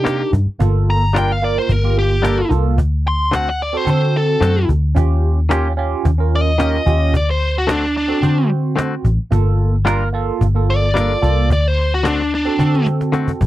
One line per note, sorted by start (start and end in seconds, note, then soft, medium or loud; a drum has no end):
0.00 0.24 C3 medium
0.00 0.21 C3 medium
0.00 0.36 D4 medium
0.00 0.36 D#4 medium
0.00 0.31 G4 medium
0.00 0.37 A#4 medium
0.05 0.22 A#3 medium
0.05 0.22 D#4 medium
0.05 0.22 G4 medium
0.05 cajon slap loud
0.33 0.45 G2 medium
0.33 cajon bass medium
0.47 muted fingered electric bass stroke soft
0.59 1.57 G1 loud
0.59 1.03 A#3 medium
0.59 1.03 F4 medium
0.59 1.03 A4 medium
0.59 cajon bass loud
0.88 1.15 A#5 loud
0.88 cajon slap soft
1.13 1.31 G3 medium
1.13 1.36 A#3 medium
1.13 1.31 D4 medium
1.13 1.31 F4 medium
1.13 1.36 F4 medium
1.13 1.31 A#4 medium
1.13 1.37 A#4 medium
1.13 cajon slap loud
1.18 1.32 G5 medium
1.32 1.43 F5 medium
1.42 1.74 A#3 medium
1.42 1.74 F4 medium
1.42 1.75 A#4 medium
1.42 1.57 D5 medium
1.59 1.72 C5 medium
1.69 2.42 G1 loud
1.69 1.97 A#4 medium
1.69 cajon bass medium
1.83 2.15 A#3 medium
1.83 2.15 F4 medium
1.83 2.16 G4 medium
1.97 2.50 G4 loud
1.97 cajon slap soft
2.22 2.39 G3 medium
2.22 2.45 A#3 medium
2.22 2.40 D4 medium
2.22 2.40 F4 medium
2.22 2.45 F4 medium
2.22 2.45 A4 medium
2.22 2.40 A#4 medium
2.22 cajon slap loud
2.49 2.78 C2 medium
2.49 2.77 A#3 medium
2.49 2.77 F4 medium
2.49 2.78 A4 medium
2.49 cajon bass medium
2.78 3.75 D2 loud
2.78 cajon bass loud
3.05 3.33 C6 loud
3.05 cajon slap soft
3.31 3.49 D3 medium
3.31 3.49 A3 medium
3.31 3.49 C4 medium
3.31 3.49 F#4 medium
3.31 3.47 F#5 medium
3.31 cajon slap loud
3.50 3.61 F#5 medium
3.60 3.77 D5 medium
3.60 cajon slap soft
3.73 3.83 C4 medium
3.73 3.83 F#4 medium
3.73 3.84 A4 medium
3.77 3.88 C5 medium
3.85 4.35 D3 medium
3.85 4.71 C4 medium
3.85 4.72 F#4 medium
3.85 4.72 A4 medium
3.85 cajon bass medium
3.85 cajon slap medium
3.90 4.15 C5 medium
4.15 4.68 A4 loud
4.15 cajon slap soft
4.41 4.65 F#2 medium
4.41 4.58 D3 medium
4.41 4.58 A3 medium
4.41 4.58 C4 medium
4.41 4.59 F#4 medium
4.41 cajon slap loud
4.69 4.93 D2 medium
4.69 cajon bass medium
4.95 5.93 D#2 loud
4.95 5.38 C#4 medium
4.95 5.39 F4 medium
4.95 5.39 G4 medium
4.95 cajon bass loud
5.23 cajon slap soft
5.49 5.66 D#3 medium
5.49 5.67 A#3 medium
5.49 5.71 C#4 medium
5.49 5.67 C#4 medium
5.49 5.72 F4 medium
5.49 5.72 G4 loud
5.49 5.68 G4 medium
5.49 cajon slap loud
5.77 6.09 C#4 medium
5.77 6.10 F4 medium
5.77 6.10 G4 medium
5.77 cajon slap soft
6.05 6.78 D#2 medium
6.05 cajon bass medium
6.18 6.50 C#4 medium
6.18 6.51 F4 medium
6.18 6.51 A#4 medium
6.32 7.13 D#5 loud
6.32 cajon slap soft
6.58 6.76 D#3 medium
6.58 6.76 A#3 medium
6.58 6.80 C#4 medium
6.58 6.76 C#4 medium
6.58 6.81 F4 medium
6.58 6.76 G4 medium
6.58 6.81 A#4 medium
6.58 cajon slap loud
6.86 7.14 D#2 medium
6.86 7.13 C#4 medium
6.86 7.14 F4 medium
6.86 7.14 G4 medium
6.86 cajon bass medium
7.14 8.11 D2 medium
7.14 7.29 D5 medium
7.14 cajon bass loud
7.31 7.56 C5 medium
7.41 cajon slap soft
7.58 7.69 F#4 medium
7.67 7.84 D3 medium
7.67 7.85 A3 medium
7.67 7.85 C4 medium
7.67 7.96 D4 medium
7.67 7.85 F#4 medium
7.67 cajon slap loud
7.96 8.49 D4 medium
7.96 cajon slap soft
8.08 8.19 C4 medium
8.08 8.19 F#4 medium
8.08 8.20 A4 medium
8.22 8.96 D3 medium
8.22 9.08 C4 medium
8.22 9.08 F#4 medium
8.22 9.09 C5 medium
8.22 cajon bass medium
8.22 cajon slap medium
8.51 cajon slap soft
8.76 8.93 D3 medium
8.76 8.94 A3 medium
8.76 8.94 C4 loud
8.76 8.94 F#4 medium
8.76 cajon slap loud
9.04 9.17 A1 medium
9.04 cajon bass medium
9.18 muted fingered electric bass stroke soft
9.31 10.29 G1 loud
9.31 9.75 A#3 medium
9.31 9.75 F4 medium
9.31 9.75 A4 medium
9.31 cajon bass loud
9.59 cajon slap soft
9.85 10.02 G3 medium
9.85 10.07 A#3 loud
9.85 10.03 D4 medium
9.85 10.08 F4 loud
9.85 10.03 F4 medium
9.85 10.08 A#4 loud
9.85 10.03 A#4 medium
9.85 cajon slap loud
10.13 10.45 A#3 medium
10.13 10.46 F4 medium
10.13 10.46 A4 medium
10.13 cajon slap soft
10.41 11.14 G1 medium
10.41 cajon bass medium
10.55 10.87 A#3 medium
10.55 10.87 F4 medium
10.55 10.87 A4 medium
10.69 11.49 D5 loud
10.69 cajon slap soft
10.94 11.12 G3 medium
10.94 11.17 A#3 medium
10.94 11.12 D4 medium
10.94 11.12 F4 medium
10.94 11.17 F4 medium
10.94 11.18 A4 medium
10.94 11.12 A#4 medium
10.94 cajon slap loud
11.21 11.50 C2 medium
11.21 11.49 A#3 medium
11.21 11.50 F4 medium
11.21 11.50 A4 medium
11.21 cajon bass medium
11.50 12.47 D2 loud
11.50 11.68 D5 medium
11.50 cajon bass loud
11.68 11.92 C5 medium
11.78 cajon slap soft
11.94 12.05 F#4 medium
12.03 12.21 D3 medium
12.03 12.21 A3 medium
12.03 12.21 C4 medium
12.03 12.32 D4 medium
12.03 12.22 F#4 medium
12.03 cajon slap loud
12.32 12.86 D4 loud
12.32 cajon slap soft
12.45 12.56 C4 medium
12.45 12.56 F#4 medium
12.45 12.56 A4 medium
12.58 13.32 D3 medium
12.58 13.44 C4 medium
12.58 13.45 F#4 medium
12.58 13.45 A4 medium
12.58 cajon bass medium
12.58 cajon slap medium
12.74 cajon slap medium
12.86 cajon slap medium
13.01 cajon slap medium
13.12 13.30 D3 medium
13.12 13.30 A3 medium
13.12 13.31 C4 loud
13.12 13.31 F#4 medium
13.12 cajon slap medium
13.28 cajon bass medium
13.41 13.47 A1 medium
13.41 cajon bass loud